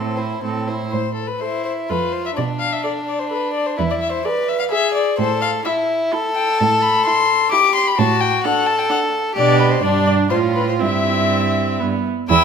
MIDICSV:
0, 0, Header, 1, 5, 480
1, 0, Start_track
1, 0, Key_signature, 0, "minor"
1, 0, Tempo, 490196
1, 903, Time_signature, 3, 2, 24, 8
1, 1855, Tempo, 472813
1, 4255, Tempo, 465477
1, 6669, Key_signature, 0, "major"
1, 10015, Tempo, 490998
1, 12556, End_track
2, 0, Start_track
2, 0, Title_t, "Violin"
2, 0, Program_c, 0, 40
2, 0, Note_on_c, 0, 72, 38
2, 420, Note_off_c, 0, 72, 0
2, 895, Note_on_c, 0, 72, 63
2, 1120, Note_off_c, 0, 72, 0
2, 1125, Note_on_c, 0, 69, 57
2, 1248, Note_on_c, 0, 71, 56
2, 1263, Note_off_c, 0, 69, 0
2, 1376, Note_on_c, 0, 72, 66
2, 1390, Note_off_c, 0, 71, 0
2, 1605, Note_off_c, 0, 72, 0
2, 1610, Note_on_c, 0, 72, 58
2, 1689, Note_off_c, 0, 72, 0
2, 1851, Note_on_c, 0, 71, 70
2, 2085, Note_on_c, 0, 72, 62
2, 2100, Note_off_c, 0, 71, 0
2, 2212, Note_off_c, 0, 72, 0
2, 2224, Note_on_c, 0, 76, 63
2, 2270, Note_off_c, 0, 76, 0
2, 2332, Note_on_c, 0, 74, 59
2, 2413, Note_off_c, 0, 74, 0
2, 2565, Note_on_c, 0, 77, 72
2, 2697, Note_on_c, 0, 76, 60
2, 2713, Note_off_c, 0, 77, 0
2, 2804, Note_off_c, 0, 76, 0
2, 2810, Note_on_c, 0, 74, 70
2, 2891, Note_off_c, 0, 74, 0
2, 3052, Note_on_c, 0, 74, 64
2, 3170, Note_on_c, 0, 72, 62
2, 3185, Note_off_c, 0, 74, 0
2, 3275, Note_off_c, 0, 72, 0
2, 3281, Note_on_c, 0, 71, 72
2, 3516, Note_off_c, 0, 71, 0
2, 3522, Note_on_c, 0, 74, 72
2, 3651, Note_on_c, 0, 72, 58
2, 3666, Note_off_c, 0, 74, 0
2, 3757, Note_off_c, 0, 72, 0
2, 3763, Note_on_c, 0, 71, 76
2, 3813, Note_off_c, 0, 71, 0
2, 3896, Note_on_c, 0, 74, 67
2, 3944, Note_off_c, 0, 74, 0
2, 4012, Note_on_c, 0, 76, 72
2, 4108, Note_off_c, 0, 76, 0
2, 4114, Note_on_c, 0, 72, 62
2, 4244, Note_on_c, 0, 74, 67
2, 4259, Note_off_c, 0, 72, 0
2, 4487, Note_on_c, 0, 76, 71
2, 4502, Note_off_c, 0, 74, 0
2, 4594, Note_off_c, 0, 76, 0
2, 4600, Note_on_c, 0, 77, 71
2, 4651, Note_off_c, 0, 77, 0
2, 4724, Note_on_c, 0, 76, 92
2, 4952, Note_off_c, 0, 76, 0
2, 4958, Note_on_c, 0, 74, 77
2, 5202, Note_off_c, 0, 74, 0
2, 5210, Note_on_c, 0, 72, 89
2, 5443, Note_off_c, 0, 72, 0
2, 5449, Note_on_c, 0, 77, 82
2, 5532, Note_off_c, 0, 77, 0
2, 5690, Note_on_c, 0, 76, 70
2, 5772, Note_off_c, 0, 76, 0
2, 6411, Note_on_c, 0, 79, 74
2, 6656, Note_on_c, 0, 81, 78
2, 6672, Note_off_c, 0, 79, 0
2, 6899, Note_on_c, 0, 83, 91
2, 6915, Note_off_c, 0, 81, 0
2, 7134, Note_off_c, 0, 83, 0
2, 7141, Note_on_c, 0, 84, 96
2, 7610, Note_off_c, 0, 84, 0
2, 7615, Note_on_c, 0, 86, 106
2, 7851, Note_off_c, 0, 86, 0
2, 7858, Note_on_c, 0, 84, 93
2, 7985, Note_on_c, 0, 83, 87
2, 8000, Note_off_c, 0, 84, 0
2, 8093, Note_on_c, 0, 81, 100
2, 8109, Note_off_c, 0, 83, 0
2, 8328, Note_on_c, 0, 79, 88
2, 8344, Note_off_c, 0, 81, 0
2, 8560, Note_off_c, 0, 79, 0
2, 8566, Note_on_c, 0, 78, 90
2, 8800, Note_on_c, 0, 81, 81
2, 8816, Note_off_c, 0, 78, 0
2, 8924, Note_on_c, 0, 79, 75
2, 8940, Note_off_c, 0, 81, 0
2, 9038, Note_off_c, 0, 79, 0
2, 9045, Note_on_c, 0, 78, 87
2, 9127, Note_off_c, 0, 78, 0
2, 9526, Note_on_c, 0, 74, 92
2, 9757, Note_on_c, 0, 71, 79
2, 9773, Note_off_c, 0, 74, 0
2, 9873, Note_on_c, 0, 72, 76
2, 9888, Note_off_c, 0, 71, 0
2, 9999, Note_on_c, 0, 74, 88
2, 10014, Note_off_c, 0, 72, 0
2, 10227, Note_off_c, 0, 74, 0
2, 10233, Note_on_c, 0, 74, 77
2, 10311, Note_off_c, 0, 74, 0
2, 10464, Note_on_c, 0, 72, 81
2, 10543, Note_off_c, 0, 72, 0
2, 10699, Note_on_c, 0, 71, 66
2, 10827, Note_off_c, 0, 71, 0
2, 10833, Note_on_c, 0, 72, 62
2, 10883, Note_off_c, 0, 72, 0
2, 10963, Note_on_c, 0, 76, 76
2, 11920, Note_off_c, 0, 76, 0
2, 12413, Note_on_c, 0, 88, 88
2, 12556, Note_off_c, 0, 88, 0
2, 12556, End_track
3, 0, Start_track
3, 0, Title_t, "Violin"
3, 0, Program_c, 1, 40
3, 0, Note_on_c, 1, 69, 30
3, 164, Note_on_c, 1, 72, 29
3, 178, Note_off_c, 1, 69, 0
3, 412, Note_off_c, 1, 72, 0
3, 429, Note_on_c, 1, 69, 29
3, 665, Note_on_c, 1, 72, 28
3, 680, Note_off_c, 1, 69, 0
3, 904, Note_off_c, 1, 72, 0
3, 1381, Note_on_c, 1, 64, 47
3, 1858, Note_on_c, 1, 65, 46
3, 1874, Note_off_c, 1, 64, 0
3, 2334, Note_off_c, 1, 65, 0
3, 2340, Note_on_c, 1, 62, 56
3, 3760, Note_on_c, 1, 64, 57
3, 3775, Note_off_c, 1, 62, 0
3, 4249, Note_off_c, 1, 64, 0
3, 4253, Note_on_c, 1, 71, 62
3, 4720, Note_off_c, 1, 71, 0
3, 4727, Note_on_c, 1, 68, 61
3, 5201, Note_off_c, 1, 68, 0
3, 5222, Note_on_c, 1, 69, 65
3, 5695, Note_off_c, 1, 69, 0
3, 5701, Note_on_c, 1, 64, 65
3, 6175, Note_on_c, 1, 69, 81
3, 6191, Note_off_c, 1, 64, 0
3, 7613, Note_on_c, 1, 67, 68
3, 7628, Note_off_c, 1, 69, 0
3, 8082, Note_off_c, 1, 67, 0
3, 8088, Note_on_c, 1, 66, 74
3, 8569, Note_on_c, 1, 69, 74
3, 8585, Note_off_c, 1, 66, 0
3, 9501, Note_off_c, 1, 69, 0
3, 9507, Note_on_c, 1, 67, 73
3, 9990, Note_off_c, 1, 67, 0
3, 10008, Note_on_c, 1, 62, 64
3, 10468, Note_off_c, 1, 62, 0
3, 10472, Note_on_c, 1, 65, 53
3, 10955, Note_on_c, 1, 64, 53
3, 10969, Note_off_c, 1, 65, 0
3, 12178, Note_off_c, 1, 64, 0
3, 12414, Note_on_c, 1, 79, 73
3, 12556, Note_off_c, 1, 79, 0
3, 12556, End_track
4, 0, Start_track
4, 0, Title_t, "Viola"
4, 0, Program_c, 2, 41
4, 0, Note_on_c, 2, 60, 28
4, 174, Note_on_c, 2, 64, 28
4, 189, Note_off_c, 2, 60, 0
4, 417, Note_off_c, 2, 64, 0
4, 423, Note_on_c, 2, 60, 29
4, 657, Note_on_c, 2, 64, 30
4, 671, Note_off_c, 2, 60, 0
4, 900, Note_off_c, 2, 64, 0
4, 1382, Note_on_c, 2, 69, 44
4, 1735, Note_off_c, 2, 69, 0
4, 1861, Note_on_c, 2, 69, 46
4, 2218, Note_off_c, 2, 69, 0
4, 2813, Note_on_c, 2, 69, 45
4, 3170, Note_off_c, 2, 69, 0
4, 3287, Note_on_c, 2, 69, 51
4, 3645, Note_off_c, 2, 69, 0
4, 4247, Note_on_c, 2, 68, 52
4, 4609, Note_off_c, 2, 68, 0
4, 4730, Note_on_c, 2, 68, 55
4, 5088, Note_off_c, 2, 68, 0
4, 5698, Note_on_c, 2, 64, 60
4, 6062, Note_off_c, 2, 64, 0
4, 6183, Note_on_c, 2, 64, 66
4, 6543, Note_off_c, 2, 64, 0
4, 7150, Note_on_c, 2, 64, 64
4, 7502, Note_off_c, 2, 64, 0
4, 7621, Note_on_c, 2, 64, 68
4, 7975, Note_off_c, 2, 64, 0
4, 8579, Note_on_c, 2, 62, 62
4, 8935, Note_off_c, 2, 62, 0
4, 9039, Note_on_c, 2, 62, 62
4, 9403, Note_off_c, 2, 62, 0
4, 9524, Note_on_c, 2, 62, 62
4, 9973, Note_off_c, 2, 62, 0
4, 10000, Note_on_c, 2, 62, 57
4, 10464, Note_off_c, 2, 62, 0
4, 10474, Note_on_c, 2, 65, 60
4, 10944, Note_on_c, 2, 60, 57
4, 10959, Note_off_c, 2, 65, 0
4, 11927, Note_on_c, 2, 59, 48
4, 11942, Note_off_c, 2, 60, 0
4, 12214, Note_off_c, 2, 59, 0
4, 12408, Note_on_c, 2, 64, 87
4, 12556, Note_off_c, 2, 64, 0
4, 12556, End_track
5, 0, Start_track
5, 0, Title_t, "Cello"
5, 0, Program_c, 3, 42
5, 0, Note_on_c, 3, 45, 40
5, 363, Note_off_c, 3, 45, 0
5, 417, Note_on_c, 3, 45, 34
5, 845, Note_off_c, 3, 45, 0
5, 908, Note_on_c, 3, 45, 55
5, 1282, Note_off_c, 3, 45, 0
5, 1855, Note_on_c, 3, 41, 51
5, 2238, Note_off_c, 3, 41, 0
5, 2343, Note_on_c, 3, 47, 58
5, 2718, Note_off_c, 3, 47, 0
5, 3771, Note_on_c, 3, 40, 64
5, 4153, Note_off_c, 3, 40, 0
5, 5210, Note_on_c, 3, 45, 68
5, 5596, Note_off_c, 3, 45, 0
5, 6668, Note_on_c, 3, 45, 74
5, 7044, Note_off_c, 3, 45, 0
5, 8100, Note_on_c, 3, 45, 79
5, 8478, Note_off_c, 3, 45, 0
5, 9532, Note_on_c, 3, 47, 70
5, 9978, Note_off_c, 3, 47, 0
5, 10007, Note_on_c, 3, 43, 60
5, 10467, Note_off_c, 3, 43, 0
5, 10480, Note_on_c, 3, 45, 55
5, 10962, Note_on_c, 3, 43, 54
5, 10977, Note_off_c, 3, 45, 0
5, 11930, Note_off_c, 3, 43, 0
5, 11936, Note_on_c, 3, 43, 52
5, 12014, Note_off_c, 3, 43, 0
5, 12413, Note_on_c, 3, 40, 81
5, 12492, Note_off_c, 3, 40, 0
5, 12556, End_track
0, 0, End_of_file